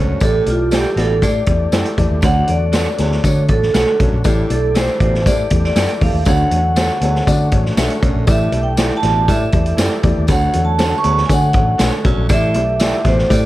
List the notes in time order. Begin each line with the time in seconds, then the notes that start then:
Already playing: C#2 F#2 D3 A3 C#4 D4 F#4 C#5
0.00 C#5
0.20 A1 A2 E3 A3 D4 E4 G4 A4 D5, kick, closed hi-hat, tambourine
0.46 B1 A3 E4 F4 G4 D5, closed hi-hat
0.71 A3 E4 G4 A4 D5 G5, snare, closed hi-hat, tambourine
0.96 A1 B2 A3 E4 G4 A4 D5, snare, closed hi-hat
1.22 A2 A3 E4 G4 D5, kick, closed hi-hat, tambourine
1.46 E2 A3 E4 G4 D5, kick, closed hi-hat
1.72 F#2 A3 E4 G4 A4 D5 G5, snare, closed hi-hat, tambourine
1.85 closed hi-hat
1.98 E2 A3 E4 G4 D5, kick, closed hi-hat
2.10 D#2
2.22 D2 D3 A3 D4 F#4 C#5 F#5, kick, closed hi-hat, tambourine
2.48 E2 A3 D4 F#4 C#5 D5, closed hi-hat
2.72 A3 D4 F#4 A4 C#5 F#5, snare, closed hi-hat, tambourine
2.98 D2 E2 A3 D4 F#4 C#5, snare, closed hi-hat
3.12 snare
3.24 D3 A3 D4 F#4 C#5, kick, closed hi-hat, tambourine
3.48 A1 A3 D4 F#4 A4 C#5, kick, closed hi-hat
3.62 snare
3.74 B1 A3 D4 F#4 A4 C#5 F#5, snare, closed hi-hat, tambourine
3.99 B1 F#2 A3 D4 F#4 C#5, kick, closed hi-hat
4.12 A#1
4.24 A1 A2 E3 A3 D4 E4 G4 D5, kick, closed hi-hat, tambourine
4.50 B1 A3 E4 G4 A4 D5, closed hi-hat
4.75 A3 E4 G4 A4 C5 D5 G5, snare, closed hi-hat, tambourine
5.00 A1 B2 A3 E4 G4 C5 D5, kick, closed hi-hat
5.14 snare
5.26 A2 A3 E4 G4 D5, kick, closed hi-hat, tambourine
5.50 E2 A3 E4 G4 D5, kick, closed hi-hat
5.64 D5, snare
5.75 F#2 A3 E4 G4 A4 D5 G5, snare, closed hi-hat, tambourine
5.89 closed hi-hat
6.01 E2 A3 E4 G4 D5 F5, kick, open hi-hat
6.13 D#2
6.25 D2 D3 A3 C#4 D4 F#4 C#5 F#5, kick, closed hi-hat, tambourine
6.51 E2 A3 D4 F#4 C#5, closed hi-hat
6.76 A3 D4 F#4 A4 C#5 F#5, snare, closed hi-hat, tambourine
7.01 D2 E2 A3 D4 F#4 C#5, closed hi-hat
7.15 snare
7.27 D3 A3 D4 F#4 D5, kick, closed hi-hat, tambourine
7.52 A1 A3 D4 F#4 C#5, kick, closed hi-hat
7.65 snare
7.77 B1 A3 D4 F#4 A4 C#5 E5 F#5, snare, closed hi-hat, tambourine
7.90 closed hi-hat
8.02 B1 F#2 A3 D4 F#4 C#5, kick, closed hi-hat
8.15 A#1
8.27 A1 A2 E3 A3 D4 E4 G4 D5 E5, kick, closed hi-hat, tambourine
8.52 B1 A3 E4 G4 D5, closed hi-hat
8.63 G5
8.77 A3 E4 G4 A4 D5 G5, snare, closed hi-hat, tambourine
8.97 A5
9.03 A1 B2 A3 E4 G4 D5, snare, closed hi-hat
9.28 A2 A3 E4 G4 D5 E5, kick, closed hi-hat, tambourine
9.52 E2 A3 E4 G4 D5, kick, closed hi-hat
9.66 closed hi-hat
9.77 F#2 A3 E4 G4 A4 D5 G5, snare, closed hi-hat, tambourine
10.03 E2 A3 E4 G4 D5, kick, closed hi-hat
10.17 D#2
10.28 D2 D3 A3 C#4 D4 F#4 C#5 F#5, kick, closed hi-hat, tambourine
10.53 E2 A3 D4 F#4 C#5, closed hi-hat
10.65 A5
10.78 A3 D4 F#4 A4 C#5 F#5, snare, closed hi-hat, tambourine
10.98 C#6
11.04 D2 E2 A3 D4 F#4 C#5, closed hi-hat
11.17 snare
11.25 G#5
11.29 D3 A3 D4 F#4 C#5 F#5, kick, closed hi-hat, tambourine
11.53 A1 A3 D4 F#4 C#5, kick, closed hi-hat
11.78 B1 A3 D4 F#4 A4 C#5 D5 F#5, snare, closed hi-hat, tambourine
12.05 B1 F#2 A3 D4 F#4 C#5, kick, closed hi-hat
12.17 A#1
12.29 A1 A2 E3 A3 D4 E4 G4 D5 E5, kick, closed hi-hat, tambourine
12.54 B1 A3 E4 G4 D5, closed hi-hat
12.80 A3 E4 G4 A4 D5 G5, snare, closed hi-hat, tambourine
13.04 A1 B2 A3 E4 G4 C5 D5, kick, snare, closed hi-hat
13.19 snare
13.30 A2 A3 E4 G4 D5, kick, closed hi-hat, tambourine